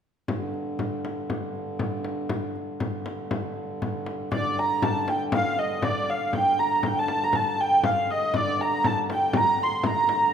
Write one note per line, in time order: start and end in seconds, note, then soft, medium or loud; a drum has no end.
0.28 4.29 G2 medium
0.28 4.29 D3 medium
0.28 frame drum medium
0.54 frame drum soft
0.79 frame drum medium
1.05 frame drum medium
1.30 frame drum medium
1.55 frame drum soft
1.79 frame drum medium
2.04 frame drum medium
2.29 frame drum medium
2.56 frame drum soft
2.80 frame drum medium
3.06 frame drum medium
3.31 frame drum medium
3.82 frame drum medium
4.07 frame drum soft
4.31 8.33 G2 medium
4.31 8.33 D3 medium
4.31 4.59 D5 medium
4.31 frame drum medium
4.57 4.84 A#5 medium
4.57 frame drum soft
4.82 5.09 A5 medium
4.82 frame drum medium
5.08 5.20 G5 medium
5.08 frame drum medium
5.32 5.58 F5 medium
5.32 frame drum medium
5.58 5.84 D#5 medium
5.82 6.10 D5 medium
5.82 frame drum medium
6.10 6.35 F5 medium
6.33 6.59 G5 medium
6.33 frame drum medium
6.58 6.86 A#5 medium
6.58 frame drum soft
6.83 6.99 G5 medium
6.83 frame drum medium
6.99 7.24 A5 medium
7.08 frame drum medium
7.24 7.35 A#5 medium
7.33 7.61 A5 medium
7.33 frame drum medium
7.61 7.85 G5 medium
7.83 8.11 F5 medium
7.83 frame drum medium
8.11 8.36 D#5 medium
8.34 10.33 G2 medium
8.34 10.33 D3 medium
8.34 8.61 D5 medium
8.34 frame drum medium
8.60 8.86 A#5 medium
8.60 frame drum soft
8.84 8.97 A5 medium
8.84 frame drum medium
9.10 9.37 G5 medium
9.10 frame drum medium
9.33 9.63 A#5 medium
9.33 frame drum medium
9.59 frame drum soft
9.63 9.87 C6 medium
9.83 10.33 A#5 medium
9.83 frame drum medium
10.09 frame drum medium